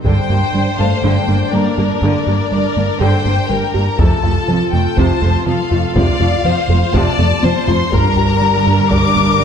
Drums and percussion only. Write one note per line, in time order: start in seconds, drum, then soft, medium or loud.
0.04 taiko medium
3.99 taiko medium
4.98 taiko medium
5.96 taiko medium
6.94 taiko medium
7.18 taiko high medium
7.43 taiko high medium
7.68 taiko low medium
7.93 taiko medium
8.91 taiko medium